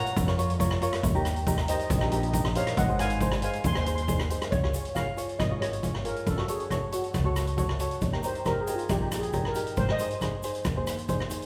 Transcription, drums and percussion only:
0.06 closed hi-hat medium
0.06 shaker soft
0.17 kick loud
0.17 closed hi-hat medium
0.17 shaker loud
0.28 cross-stick medium
0.28 shaker soft
0.39 closed hi-hat medium
0.39 shaker medium
0.50 closed hi-hat medium
0.60 kick medium
0.60 closed hi-hat medium
0.60 shaker loud
0.71 cross-stick medium
0.82 closed hi-hat medium
0.82 shaker medium
0.93 cross-stick medium
0.93 closed hi-hat medium
1.03 kick loud
1.03 closed hi-hat medium
1.03 shaker loud
1.15 shaker soft
1.25 cross-stick medium
1.25 closed hi-hat medium
1.25 shaker medium
1.36 closed hi-hat medium
1.36 shaker soft
1.46 kick medium
1.46 closed hi-hat medium
1.46 shaker loud
1.58 cross-stick medium
1.58 shaker soft
1.68 closed hi-hat loud
1.68 shaker medium
1.79 closed hi-hat medium
1.79 shaker soft
1.90 kick loud
1.90 closed hi-hat medium
1.90 shaker loud
2.01 cross-stick medium
2.12 closed hi-hat medium
2.12 shaker medium
2.23 closed hi-hat medium
2.33 kick medium
2.33 closed hi-hat medium
2.33 shaker loud
2.45 cross-stick medium
2.55 closed hi-hat medium
2.55 shaker medium
2.67 cross-stick medium
2.67 closed hi-hat medium
2.77 kick loud
2.77 closed hi-hat medium
2.77 shaker medium
2.90 shaker soft
2.99 cross-stick medium
2.99 closed hi-hat medium
2.99 shaker medium
3.10 closed hi-hat medium
3.10 shaker soft
3.20 kick medium
3.20 closed hi-hat medium
3.20 shaker medium
3.31 cross-stick medium
3.31 shaker soft
3.42 closed hi-hat loud
3.42 shaker medium
3.53 closed hi-hat medium
3.53 shaker soft
3.64 kick loud
3.64 closed hi-hat medium
3.64 shaker loud
3.75 cross-stick medium
3.75 shaker soft
3.86 closed hi-hat medium
3.86 shaker medium
3.98 closed hi-hat medium
3.98 shaker soft
4.08 kick medium
4.08 closed hi-hat medium
4.08 shaker loud
4.19 cross-stick medium
4.19 shaker soft
4.30 closed hi-hat medium
4.30 shaker medium
4.42 cross-stick medium
4.42 closed hi-hat medium
4.42 shaker soft
4.52 kick loud
4.52 closed hi-hat medium
4.52 shaker medium
4.64 cross-stick medium
4.74 closed hi-hat medium
4.74 shaker medium
4.85 closed hi-hat medium
4.95 kick medium
4.95 cross-stick medium
4.95 closed hi-hat medium
4.95 shaker medium
5.18 closed hi-hat medium
5.18 shaker medium
5.29 closed hi-hat medium
5.40 kick loud
5.40 cross-stick medium
5.40 closed hi-hat medium
5.40 shaker medium
5.62 cross-stick medium
5.62 closed hi-hat medium
5.73 closed hi-hat medium
5.73 shaker soft
5.83 kick medium
5.83 closed hi-hat medium
5.83 shaker medium
5.95 cross-stick medium
6.05 closed hi-hat medium
6.16 closed hi-hat medium
6.26 kick loud
6.26 closed hi-hat medium
6.26 shaker medium
6.38 cross-stick medium
6.48 closed hi-hat medium
6.48 shaker medium
6.60 closed hi-hat medium
6.70 kick medium
6.70 cross-stick medium
6.70 closed hi-hat medium
6.70 shaker medium
6.92 closed hi-hat medium
6.92 shaker medium
7.04 closed hi-hat medium
7.14 kick medium
7.14 cross-stick medium
7.14 closed hi-hat medium
7.14 shaker medium
7.36 cross-stick medium
7.36 closed hi-hat medium
7.36 shaker medium
7.47 closed hi-hat medium
7.47 shaker soft
7.58 kick medium
7.58 closed hi-hat medium
7.58 shaker medium
7.69 cross-stick medium
7.80 closed hi-hat medium
7.80 shaker medium
7.91 closed hi-hat medium
8.01 kick loud
8.01 closed hi-hat medium
8.01 shaker medium
8.13 cross-stick medium
8.23 closed hi-hat medium
8.23 shaker medium
8.35 closed hi-hat medium
8.45 kick medium
8.45 cross-stick medium
8.45 closed hi-hat medium
8.45 shaker medium
8.67 closed hi-hat medium
8.67 shaker medium
8.79 closed hi-hat medium
8.89 kick loud
8.89 cross-stick medium
8.89 closed hi-hat medium
8.89 shaker medium
9.12 cross-stick medium
9.12 closed hi-hat medium
9.12 shaker medium
9.23 closed hi-hat medium
9.23 shaker soft
9.33 kick medium
9.33 closed hi-hat medium
9.33 shaker medium
9.45 cross-stick medium
9.55 closed hi-hat medium
9.55 shaker medium
9.67 closed hi-hat medium
9.77 kick loud
9.77 closed hi-hat medium
9.77 shaker medium
9.89 cross-stick medium
9.99 closed hi-hat medium
9.99 shaker medium
10.11 closed hi-hat medium
10.21 kick medium
10.21 cross-stick medium
10.21 closed hi-hat medium
10.21 shaker medium
10.43 closed hi-hat medium
10.43 shaker medium
10.55 closed hi-hat medium
10.65 kick medium
10.65 cross-stick medium
10.65 closed hi-hat medium
10.65 shaker medium
10.87 cross-stick medium
10.87 closed hi-hat medium
10.87 shaker medium
10.98 closed hi-hat medium
10.98 shaker soft
11.09 kick medium
11.09 closed hi-hat medium
11.09 shaker medium
11.20 cross-stick medium
11.30 closed hi-hat medium
11.30 shaker medium
11.42 closed hi-hat medium
11.42 shaker soft

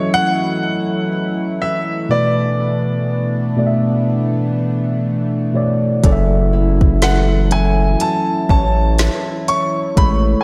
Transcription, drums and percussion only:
6.04 kick loud
6.04 closed hi-hat medium
6.81 kick loud
7.02 snare loud
7.02 closed hi-hat medium
7.51 closed hi-hat medium
8.00 closed hi-hat medium
8.49 kick medium
8.98 snare loud
8.98 closed hi-hat medium
9.48 closed hi-hat medium
9.97 kick loud
9.97 closed hi-hat medium

